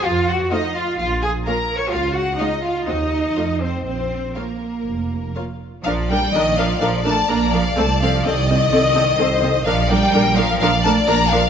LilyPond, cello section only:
\new Staff \with { instrumentName = "Cello section" } { \time 4/4 \key bes \minor \tempo 4 = 126 f'8 ges'8 ees'8 f'8 f'8 aes'8 \tuplet 3/2 { bes'4 des''8 } | f'8 ges'8 ees'8 f'8 ees'4. c'8 | c'4 bes2 r4 | \key bes \major f8 g8 ees8 f8 f8 a8 bes8 f8 |
a8 f8 ees2. | f8 g4 f8 f8 a8 bes8 f8 | }